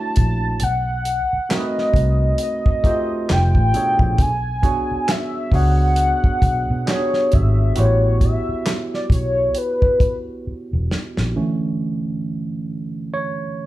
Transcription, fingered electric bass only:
0, 0, Header, 1, 3, 480
1, 0, Start_track
1, 0, Tempo, 895522
1, 323, Time_signature, 4, 2, 24, 8
1, 7323, End_track
2, 0, Start_track
2, 0, Title_t, "Fingered electric bass"
2, 0, Program_c, 0, 33
2, 96, Note_on_c, 0, 34, 82
2, 289, Note_off_c, 0, 34, 0
2, 331, Note_on_c, 0, 35, 98
2, 641, Note_off_c, 0, 35, 0
2, 1042, Note_on_c, 0, 36, 86
2, 1241, Note_off_c, 0, 36, 0
2, 1774, Note_on_c, 0, 29, 88
2, 1885, Note_off_c, 0, 29, 0
2, 1907, Note_on_c, 0, 33, 87
2, 1987, Note_off_c, 0, 33, 0
2, 2146, Note_on_c, 0, 34, 85
2, 2227, Note_off_c, 0, 34, 0
2, 2248, Note_on_c, 0, 35, 104
2, 2559, Note_off_c, 0, 35, 0
2, 2964, Note_on_c, 0, 37, 81
2, 3277, Note_off_c, 0, 37, 0
2, 3446, Note_on_c, 0, 35, 86
2, 3561, Note_off_c, 0, 35, 0
2, 3593, Note_on_c, 0, 47, 80
2, 3671, Note_off_c, 0, 47, 0
2, 3936, Note_on_c, 0, 32, 84
2, 4129, Note_off_c, 0, 32, 0
2, 4171, Note_on_c, 0, 33, 88
2, 4481, Note_off_c, 0, 33, 0
2, 4883, Note_on_c, 0, 35, 77
2, 5081, Note_off_c, 0, 35, 0
2, 5752, Note_on_c, 0, 28, 90
2, 5830, Note_off_c, 0, 28, 0
2, 5994, Note_on_c, 0, 34, 82
2, 6072, Note_off_c, 0, 34, 0
2, 7323, End_track
3, 0, Start_track
3, 0, Title_t, "Muted fingered electric bass strokes"
3, 713, Note_on_c, 9, 29, 37
3, 766, Note_off_c, 9, 29, 0
3, 2633, Note_on_c, 9, 29, 40
3, 2687, Note_off_c, 9, 29, 0
3, 4550, Note_on_c, 9, 29, 41
3, 4603, Note_off_c, 9, 29, 0
3, 5612, Note_on_c, 9, 29, 44
3, 5666, Note_off_c, 9, 29, 0
3, 7323, End_track
0, 0, End_of_file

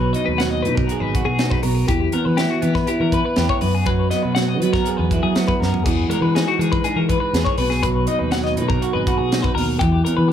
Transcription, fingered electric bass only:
0, 0, Header, 1, 2, 480
1, 0, Start_track
1, 0, Key_signature, 5, "major"
1, 0, Tempo, 495458
1, 1831, Time_signature, 4, 2, 24, 8
1, 10005, End_track
2, 0, Start_track
2, 0, Title_t, "Fingered electric bass"
2, 0, Program_c, 0, 33
2, 0, Note_on_c, 0, 35, 86
2, 130, Note_off_c, 0, 35, 0
2, 270, Note_on_c, 0, 39, 72
2, 627, Note_on_c, 0, 47, 93
2, 641, Note_off_c, 0, 39, 0
2, 814, Note_off_c, 0, 47, 0
2, 979, Note_on_c, 0, 32, 89
2, 1169, Note_off_c, 0, 32, 0
2, 1222, Note_on_c, 0, 47, 89
2, 1504, Note_off_c, 0, 47, 0
2, 1585, Note_on_c, 0, 35, 78
2, 1773, Note_off_c, 0, 35, 0
2, 1830, Note_on_c, 0, 40, 81
2, 2016, Note_off_c, 0, 40, 0
2, 2187, Note_on_c, 0, 52, 83
2, 2374, Note_off_c, 0, 52, 0
2, 2545, Note_on_c, 0, 52, 84
2, 2733, Note_off_c, 0, 52, 0
2, 2907, Note_on_c, 0, 52, 78
2, 3094, Note_off_c, 0, 52, 0
2, 3269, Note_on_c, 0, 40, 94
2, 3363, Note_off_c, 0, 40, 0
2, 3507, Note_on_c, 0, 42, 92
2, 3973, Note_off_c, 0, 42, 0
2, 4114, Note_on_c, 0, 47, 78
2, 4473, Note_off_c, 0, 47, 0
2, 4473, Note_on_c, 0, 54, 92
2, 4658, Note_off_c, 0, 54, 0
2, 4834, Note_on_c, 0, 40, 89
2, 5019, Note_off_c, 0, 40, 0
2, 5071, Note_on_c, 0, 54, 85
2, 5349, Note_off_c, 0, 54, 0
2, 5433, Note_on_c, 0, 42, 77
2, 5618, Note_off_c, 0, 42, 0
2, 5676, Note_on_c, 0, 40, 87
2, 5860, Note_off_c, 0, 40, 0
2, 6021, Note_on_c, 0, 52, 87
2, 6210, Note_off_c, 0, 52, 0
2, 6383, Note_on_c, 0, 52, 85
2, 6571, Note_off_c, 0, 52, 0
2, 6741, Note_on_c, 0, 52, 80
2, 6931, Note_off_c, 0, 52, 0
2, 7104, Note_on_c, 0, 40, 91
2, 7200, Note_off_c, 0, 40, 0
2, 7343, Note_on_c, 0, 35, 95
2, 7810, Note_off_c, 0, 35, 0
2, 7949, Note_on_c, 0, 39, 82
2, 8308, Note_on_c, 0, 47, 88
2, 8322, Note_off_c, 0, 39, 0
2, 8494, Note_off_c, 0, 47, 0
2, 8671, Note_on_c, 0, 32, 91
2, 8856, Note_off_c, 0, 32, 0
2, 8907, Note_on_c, 0, 47, 80
2, 9186, Note_off_c, 0, 47, 0
2, 9261, Note_on_c, 0, 39, 81
2, 9450, Note_off_c, 0, 39, 0
2, 9511, Note_on_c, 0, 40, 90
2, 9696, Note_off_c, 0, 40, 0
2, 9862, Note_on_c, 0, 52, 88
2, 10005, Note_off_c, 0, 52, 0
2, 10005, End_track
0, 0, End_of_file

